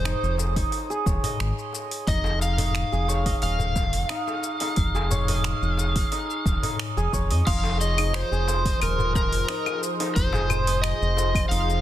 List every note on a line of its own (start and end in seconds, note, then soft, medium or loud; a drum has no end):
0.00 0.14 F1 loud
0.00 0.90 G#4 medium
0.00 0.35 C5 medium
0.00 1.06 C#5 medium
0.00 1.23 D#5 medium
0.00 7.45 C6 medium
0.05 0.56 D#4 medium
0.05 finger snap medium
0.05 open hi-hat soft
0.05 shaker soft
0.23 0.65 F1 medium
0.23 shaker soft
0.38 darbuka tek medium
0.38 shaker medium
0.56 2.07 D#4 medium
0.56 kick medium
0.56 open hi-hat medium
0.56 shaker soft
0.71 open hi-hat soft
0.71 darbuka ka medium
0.71 shaker soft
0.90 2.92 G#4 medium
0.90 shaker soft
1.06 1.19 D#1 loud
1.06 3.08 C#5 medium
1.06 kick medium
1.06 darbuka ka medium
1.06 shaker medium
1.23 3.26 D#5 medium
1.23 open hi-hat medium
1.23 darbuka ka soft
1.23 darbuka dum medium
1.23 shaker soft
1.40 1.52 G#1 medium
1.40 finger snap medium
1.40 open hi-hat soft
1.40 shaker soft
1.59 shaker soft
1.73 darbuka ka soft
1.73 shaker medium
1.91 open hi-hat medium
1.91 shaker soft
2.07 2.84 F1 loud
2.07 2.58 D#4 medium
2.07 2.42 D#5 loud
2.07 kick loud
2.07 open hi-hat soft
2.07 shaker soft
2.24 darbuka ka medium
2.24 darbuka tek medium
2.24 shaker soft
2.42 3.42 F5 loud
2.42 shaker medium
2.58 4.09 D#4 medium
2.58 open hi-hat medium
2.58 darbuka dum medium
2.58 shaker soft
2.75 finger snap medium
2.75 open hi-hat soft
2.75 shaker soft
2.92 3.34 F1 medium
2.92 4.94 G#4 medium
2.92 shaker soft
3.08 5.11 C#5 medium
3.08 darbuka tek medium
3.08 shaker medium
3.26 5.28 D#5 medium
3.26 kick medium
3.26 open hi-hat medium
3.26 shaker soft
3.42 3.94 D#1 medium
3.42 6.76 F5 medium
3.42 open hi-hat soft
3.42 shaker soft
3.59 darbuka dum medium
3.59 shaker soft
3.76 kick loud
3.76 darbuka tek medium
3.76 shaker medium
3.93 4.05 F1 medium
3.93 open hi-hat medium
3.93 darbuka ka soft
3.93 shaker soft
4.09 4.60 D#4 medium
4.09 finger snap medium
4.09 open hi-hat soft
4.09 shaker soft
4.28 darbuka tek medium
4.28 shaker soft
4.43 shaker medium
4.60 6.12 D#4 medium
4.60 open hi-hat medium
4.60 darbuka tek medium
4.60 shaker soft
4.76 5.54 F1 medium
4.76 kick loud
4.76 open hi-hat soft
4.76 shaker soft
4.95 6.97 G#4 medium
4.95 darbuka ka soft
4.95 darbuka tek medium
4.95 shaker soft
5.11 7.13 C#5 medium
5.11 darbuka dum medium
5.11 shaker medium
5.28 7.31 D#5 medium
5.28 open hi-hat medium
5.28 darbuka dum medium
5.28 shaker soft
5.44 finger snap medium
5.44 open hi-hat soft
5.44 shaker soft
5.62 6.04 F1 medium
5.62 shaker soft
5.77 darbuka tek medium
5.77 shaker medium
5.96 kick medium
5.96 open hi-hat medium
5.96 shaker soft
6.12 6.63 D#4 medium
6.12 open hi-hat soft
6.12 darbuka ka medium
6.12 shaker soft
6.30 shaker soft
6.45 6.58 D#1 loud
6.45 kick loud
6.45 darbuka ka medium
6.45 shaker medium
6.63 7.47 D#4 medium
6.63 open hi-hat medium
6.63 darbuka ka medium
6.63 darbuka dum medium
6.63 shaker soft
6.79 finger snap medium
6.79 open hi-hat soft
6.79 shaker soft
6.97 7.08 F1 medium
6.97 8.32 G#4 medium
6.97 shaker soft
7.12 7.32 F1 medium
7.12 8.54 C#5 medium
7.12 kick medium
7.12 darbuka ka soft
7.12 shaker medium
7.30 7.42 F2 medium
7.30 8.65 D#5 medium
7.30 open hi-hat medium
7.30 shaker soft
7.47 8.23 F1 loud
7.47 11.81 F3 medium
7.47 7.98 D#4 medium
7.47 7.80 F5 loud
7.47 11.81 C6 medium
7.47 kick loud
7.47 open hi-hat soft
7.47 crash medium
7.47 shaker soft
7.64 11.81 G#4 medium
7.64 darbuka ka soft
7.64 darbuka tek medium
7.64 shaker soft
7.81 8.15 D#5 loud
7.81 shaker medium
7.90 11.81 F4 medium
7.90 11.81 C5 medium
7.98 9.49 D#4 medium
7.98 open hi-hat medium
7.98 darbuka ka soft
7.98 claves medium
7.98 shaker soft
8.14 8.82 C5 loud
8.14 finger snap loud
8.14 open hi-hat soft
8.14 shaker soft
8.31 8.74 F1 medium
8.31 10.33 G#4 medium
8.31 shaker soft
8.48 10.49 C5 medium
8.48 darbuka tek medium
8.48 shaker medium
8.65 10.67 D#5 medium
8.65 kick medium
8.65 open hi-hat medium
8.65 darbuka ka soft
8.65 shaker soft
8.81 9.34 D#1 loud
8.81 9.14 A#4 medium
8.81 open hi-hat soft
8.81 claves medium
8.81 shaker soft
8.87 11.81 D#5 medium
8.99 darbuka dum medium
8.99 shaker soft
9.15 9.79 A#4 medium
9.15 kick loud
9.15 darbuka ka soft
9.15 darbuka tek medium
9.15 shaker medium
9.33 9.44 F1 medium
9.33 open hi-hat medium
9.33 shaker soft
9.48 9.99 D#4 medium
9.48 finger snap loud
9.48 open hi-hat soft
9.48 shaker soft
9.66 darbuka tek medium
9.66 claves medium
9.66 shaker soft
9.82 darbuka ka soft
9.82 shaker medium
10.00 11.50 D#4 medium
10.00 open hi-hat medium
10.00 darbuka tek medium
10.00 shaker soft
10.16 10.93 F1 loud
10.16 10.79 C5 medium
10.16 kick loud
10.16 open hi-hat soft
10.16 shaker soft
10.33 11.81 G#4 medium
10.33 darbuka tek medium
10.33 darbuka dum medium
10.33 shaker soft
10.50 11.81 C5 medium
10.50 darbuka dum medium
10.50 claves medium
10.50 shaker medium
10.67 11.81 D#5 medium
10.67 open hi-hat medium
10.67 darbuka ka soft
10.67 shaker soft
10.82 11.48 D#5 medium
10.82 finger snap loud
10.82 open hi-hat soft
10.82 shaker soft
11.01 11.43 F1 medium
11.01 shaker soft
11.17 darbuka tek medium
11.17 shaker medium
11.35 kick loud
11.35 open hi-hat medium
11.35 claves medium
11.35 shaker soft
11.49 11.81 F1 medium
11.49 11.81 D#4 medium
11.49 11.81 F5 loud
11.49 open hi-hat soft
11.49 shaker soft
11.69 darbuka tek soft
11.69 shaker soft